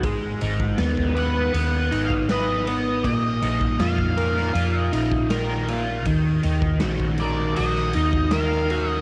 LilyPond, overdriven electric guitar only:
\new Staff \with { instrumentName = "Overdriven electric guitar" } { \time 4/4 \tempo 4 = 80 aes8 ees'8 ces'8 ces''8 ces'8 ees'8 ces''8 ces'8 | bes,8 ees'8 f'8 bes'8 f'8 ees'8 bes'8 f'8 | ees8 ees'8 ges'8 bes'8 ges'8 ees'8 bes'8 ges'8 | }